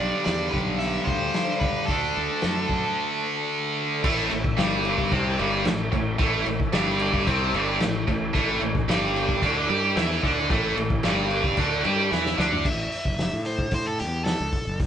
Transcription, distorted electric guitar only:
Already playing: G2 D3 G3
1.89 D3 A3 D4
4.03 A2 A3
4.31 A2
4.57 G2 G3
5.12 C3 C4
5.38 G2 G3
5.65 A2
5.92 A2
6.18 A2 A3
6.46 A2
6.73 G2 G3
7.27 C3 C4
7.54 G2 G3
7.82 A2
8.08 A2
8.34 A2 A3
8.62 A2
8.89 G2 G3
9.42 D3 D4
9.68 G3 G4
9.96 E3 E4
10.23 D3 D4
10.50 A2 A3
10.77 A2
11.04 G2 G3
11.58 D3 D4
11.84 G3 G4
12.10 E3 E4
12.37 D3 D4

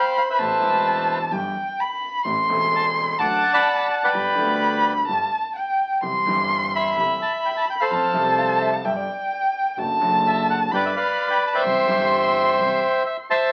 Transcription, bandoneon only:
Already playing: C5 F5 G5
0.18 F5
0.30 B4 C5 E5
2.76 A5
2.97 C6
3.19 F#5 A5 D6
3.53 D5 F#5 B5
3.90 A5
4.04 B4 D5 G5
6.52 C6
6.75 E5 B5
7.22 A5
7.46 G5
7.57 A5
7.70 G5
7.80 A4 C5 F5
10.27 E5
10.50 F#5
10.74 B4 D5 G5
10.86 E5
10.96 B4 D5 F5
11.30 G5
11.47 A5
11.54 C5 E5 G5
13.06 E5
13.30 C5 E5 A5

